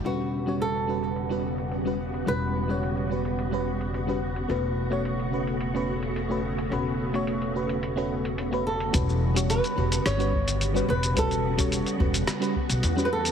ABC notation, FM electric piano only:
X:1
M:4/4
L:1/16
Q:1/4=108
K:Amix
V:1 name="FM electric piano"
[G,CFB]3 [G,CFc]3 [G,CFB]3 [G,CFB] z3 [G,CFB] z2 | [G,CFB]3 [G,CFc]3 [G,CFB]3 [G,CFB] z3 [G,CFB] z2 | [A,CFB]3 [A,CFc]3 [A,CFB]3 [A,CFB] z3 [A,CFB] z2 | [A,CFB]3 [A,CFc]3 [A,CFB]3 [A,CFB] z3 [A,CFB] z2 |
[G,CFB]3 [G,CFc]3 [G,CFB]3 [G,CFB] z3 [G,CFB] z2 | [G,CFB]3 [G,CFc]3 [G,CFB]3 [G,CFB] z3 [G,CFB] z2 |]